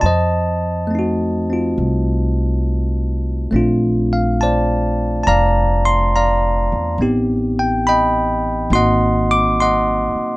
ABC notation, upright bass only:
X:1
M:4/4
L:1/8
Q:"Swing" 1/4=69
K:Fmix
V:1 name="Upright bass" clef=bass
F,,4 C,,4 | B,,,4 F,,,3 =E,, | A,,,4 _A,,,3 z |]